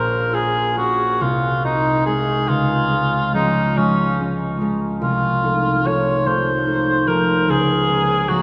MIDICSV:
0, 0, Header, 1, 3, 480
1, 0, Start_track
1, 0, Key_signature, -5, "minor"
1, 0, Tempo, 859599
1, 1391, Time_signature, 6, 3, 24, 8
1, 2346, Tempo, 819672
1, 4819, End_track
2, 0, Start_track
2, 0, Title_t, "Cor anglais"
2, 0, Program_c, 0, 69
2, 0, Note_on_c, 0, 70, 47
2, 188, Note_on_c, 0, 68, 52
2, 197, Note_off_c, 0, 70, 0
2, 428, Note_off_c, 0, 68, 0
2, 432, Note_on_c, 0, 66, 48
2, 679, Note_on_c, 0, 65, 45
2, 688, Note_off_c, 0, 66, 0
2, 915, Note_off_c, 0, 65, 0
2, 919, Note_on_c, 0, 63, 44
2, 1146, Note_off_c, 0, 63, 0
2, 1149, Note_on_c, 0, 68, 44
2, 1385, Note_on_c, 0, 65, 51
2, 1393, Note_off_c, 0, 68, 0
2, 1862, Note_off_c, 0, 65, 0
2, 1865, Note_on_c, 0, 63, 50
2, 2105, Note_on_c, 0, 61, 45
2, 2113, Note_off_c, 0, 63, 0
2, 2343, Note_off_c, 0, 61, 0
2, 2827, Note_on_c, 0, 65, 56
2, 3318, Note_on_c, 0, 73, 49
2, 3327, Note_off_c, 0, 65, 0
2, 3557, Note_on_c, 0, 72, 42
2, 3566, Note_off_c, 0, 73, 0
2, 4029, Note_on_c, 0, 70, 49
2, 4037, Note_off_c, 0, 72, 0
2, 4275, Note_on_c, 0, 68, 62
2, 4284, Note_off_c, 0, 70, 0
2, 4737, Note_on_c, 0, 66, 53
2, 4745, Note_off_c, 0, 68, 0
2, 4819, Note_off_c, 0, 66, 0
2, 4819, End_track
3, 0, Start_track
3, 0, Title_t, "Harp"
3, 0, Program_c, 1, 46
3, 0, Note_on_c, 1, 34, 37
3, 0, Note_on_c, 1, 61, 29
3, 0, Note_on_c, 1, 65, 29
3, 0, Note_on_c, 1, 70, 33
3, 177, Note_off_c, 1, 65, 0
3, 184, Note_on_c, 1, 65, 30
3, 425, Note_off_c, 1, 61, 0
3, 428, Note_off_c, 1, 65, 0
3, 431, Note_on_c, 1, 61, 28
3, 434, Note_on_c, 1, 65, 29
3, 675, Note_on_c, 1, 36, 37
3, 697, Note_off_c, 1, 34, 0
3, 697, Note_off_c, 1, 61, 0
3, 698, Note_off_c, 1, 70, 0
3, 699, Note_off_c, 1, 65, 0
3, 916, Note_on_c, 1, 60, 28
3, 919, Note_on_c, 1, 63, 32
3, 1150, Note_off_c, 1, 60, 0
3, 1154, Note_off_c, 1, 63, 0
3, 1155, Note_on_c, 1, 56, 28
3, 1157, Note_on_c, 1, 60, 27
3, 1161, Note_on_c, 1, 63, 28
3, 1389, Note_on_c, 1, 37, 37
3, 1408, Note_off_c, 1, 36, 0
3, 1411, Note_off_c, 1, 60, 0
3, 1413, Note_off_c, 1, 63, 0
3, 1625, Note_off_c, 1, 56, 0
3, 1630, Note_on_c, 1, 56, 27
3, 1632, Note_on_c, 1, 61, 28
3, 1863, Note_off_c, 1, 56, 0
3, 1865, Note_off_c, 1, 61, 0
3, 1867, Note_on_c, 1, 53, 28
3, 1868, Note_on_c, 1, 56, 29
3, 1873, Note_on_c, 1, 61, 32
3, 2102, Note_off_c, 1, 53, 0
3, 2103, Note_off_c, 1, 56, 0
3, 2106, Note_off_c, 1, 61, 0
3, 2107, Note_on_c, 1, 53, 29
3, 2111, Note_on_c, 1, 56, 31
3, 2113, Note_on_c, 1, 61, 31
3, 2338, Note_off_c, 1, 56, 0
3, 2340, Note_off_c, 1, 61, 0
3, 2343, Note_on_c, 1, 56, 30
3, 2348, Note_on_c, 1, 61, 31
3, 2577, Note_off_c, 1, 53, 0
3, 2578, Note_off_c, 1, 56, 0
3, 2582, Note_off_c, 1, 61, 0
3, 2583, Note_on_c, 1, 53, 27
3, 2586, Note_on_c, 1, 56, 29
3, 2589, Note_on_c, 1, 61, 29
3, 2822, Note_on_c, 1, 36, 35
3, 2848, Note_off_c, 1, 37, 0
3, 2848, Note_off_c, 1, 56, 0
3, 2850, Note_off_c, 1, 61, 0
3, 3065, Note_on_c, 1, 57, 27
3, 3068, Note_on_c, 1, 63, 28
3, 3302, Note_off_c, 1, 53, 0
3, 3305, Note_off_c, 1, 57, 0
3, 3309, Note_off_c, 1, 63, 0
3, 3309, Note_on_c, 1, 53, 27
3, 3312, Note_on_c, 1, 57, 30
3, 3316, Note_on_c, 1, 63, 31
3, 3546, Note_off_c, 1, 53, 0
3, 3548, Note_off_c, 1, 57, 0
3, 3548, Note_off_c, 1, 63, 0
3, 3553, Note_on_c, 1, 53, 32
3, 3554, Note_on_c, 1, 57, 29
3, 3557, Note_on_c, 1, 63, 34
3, 3777, Note_off_c, 1, 57, 0
3, 3780, Note_off_c, 1, 63, 0
3, 3784, Note_on_c, 1, 57, 27
3, 3787, Note_on_c, 1, 63, 34
3, 4023, Note_off_c, 1, 53, 0
3, 4024, Note_off_c, 1, 57, 0
3, 4027, Note_off_c, 1, 63, 0
3, 4028, Note_on_c, 1, 53, 27
3, 4032, Note_on_c, 1, 57, 28
3, 4034, Note_on_c, 1, 63, 31
3, 4266, Note_on_c, 1, 37, 39
3, 4290, Note_off_c, 1, 36, 0
3, 4292, Note_off_c, 1, 57, 0
3, 4294, Note_off_c, 1, 63, 0
3, 4506, Note_on_c, 1, 58, 28
3, 4510, Note_on_c, 1, 61, 29
3, 4740, Note_off_c, 1, 53, 0
3, 4742, Note_off_c, 1, 58, 0
3, 4744, Note_off_c, 1, 61, 0
3, 4745, Note_on_c, 1, 53, 32
3, 4751, Note_on_c, 1, 58, 32
3, 4751, Note_on_c, 1, 61, 33
3, 4819, Note_off_c, 1, 37, 0
3, 4819, Note_off_c, 1, 53, 0
3, 4819, Note_off_c, 1, 58, 0
3, 4819, Note_off_c, 1, 61, 0
3, 4819, End_track
0, 0, End_of_file